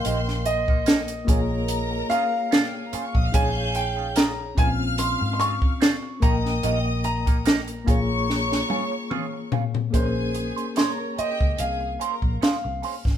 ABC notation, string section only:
X:1
M:4/4
L:1/16
Q:"Swing 16ths" 1/4=73
K:Bbdor
V:1 name="String section"
[cc']4 z2 [Bb]6 z/2 [Gg]/2 [Aa]/2 [Bb]/2 [cc']/2 [dd']/2 [ee']/2 [ff']/2 | [fg']4 z2 [ff']6 z2 [ee']2- | [ee']4 z2 [dd']8 z2 | [Aa]4 [Bb]2 [Gg]2 [Aa]2 [Bb]2 z4 |]